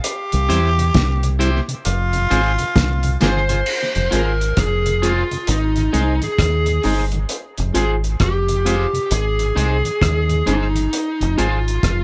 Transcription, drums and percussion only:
0.04 closed hi-hat loud
0.32 closed hi-hat soft
0.50 closed hi-hat medium
0.79 closed hi-hat soft
0.94 kick loud
0.94 snare loud
0.94 closed hi-hat medium
1.23 closed hi-hat medium
1.41 closed hi-hat medium
1.69 closed hi-hat medium
1.85 closed hi-hat medium
2.13 closed hi-hat soft
2.31 closed hi-hat medium
2.59 closed hi-hat medium
2.76 kick loud
2.76 snare loud
2.76 closed hi-hat loud
3.03 closed hi-hat medium
3.21 snare medium
3.21 closed hi-hat medium
3.49 closed hi-hat medium
3.66 crash medium
3.95 closed hi-hat soft
4.12 closed hi-hat medium
4.41 closed hi-hat soft
4.57 kick loud
4.57 cross-stick loud
4.57 closed hi-hat medium
4.86 closed hi-hat medium
5.03 closed hi-hat medium
5.31 closed hi-hat medium
5.47 closed hi-hat medium
5.76 closed hi-hat soft
5.94 closed hi-hat medium
6.22 closed hi-hat soft
6.39 kick loud
6.39 cross-stick loud
6.39 closed hi-hat medium
6.66 closed hi-hat soft
6.83 open hi-hat medium
7.12 closed hi-hat medium
7.29 closed hi-hat medium
7.58 closed hi-hat soft
7.75 closed hi-hat medium
8.04 closed hi-hat soft
8.20 kick loud
8.20 cross-stick loud
8.20 closed hi-hat medium
8.49 closed hi-hat medium
8.66 closed hi-hat medium
8.95 closed hi-hat medium
9.11 closed hi-hat medium
9.39 closed hi-hat soft
9.57 closed hi-hat medium
9.85 closed hi-hat medium
10.02 kick loud
10.02 cross-stick loud
10.02 closed hi-hat medium
10.29 closed hi-hat soft
10.47 closed hi-hat medium
10.76 closed hi-hat medium
10.93 closed hi-hat medium
11.21 closed hi-hat soft
11.38 closed hi-hat medium
11.68 closed hi-hat medium
11.83 kick loud
11.83 cross-stick loud
11.83 closed hi-hat medium

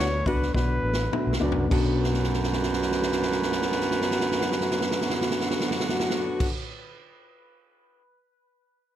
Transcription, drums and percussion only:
0.26 kick loud
0.26 ride medium
0.42 snare soft
0.54 kick medium
0.54 snare medium
0.93 snare medium
1.13 mid tom medium
1.33 snare medium
1.52 floor tom loud
1.71 kick loud
1.71 crash loud
2.04 snare medium
2.14 snare soft
2.24 snare soft
2.33 snare soft
2.43 snare medium
2.53 snare medium
2.63 snare medium
2.73 snare medium
2.82 snare medium
2.92 snare medium
3.02 snare medium
3.12 snare medium
3.22 snare medium
3.32 snare medium
3.42 snare medium
3.52 snare medium
3.62 snare medium
3.72 snare medium
3.81 snare medium
3.91 snare medium
4.01 snare medium
4.11 snare medium
4.20 snare medium
4.31 snare medium
4.41 snare medium
4.52 snare medium
4.61 snare medium
4.71 snare medium
4.81 snare medium
4.91 snare medium
5.01 snare medium
5.10 snare medium
5.21 snare medium
5.31 snare medium
5.40 snare medium
5.51 snare medium
5.61 snare medium
5.71 snare medium
5.80 snare medium
5.89 snare medium
6.00 snare loud
6.10 snare loud
6.40 kick loud
6.40 crash loud

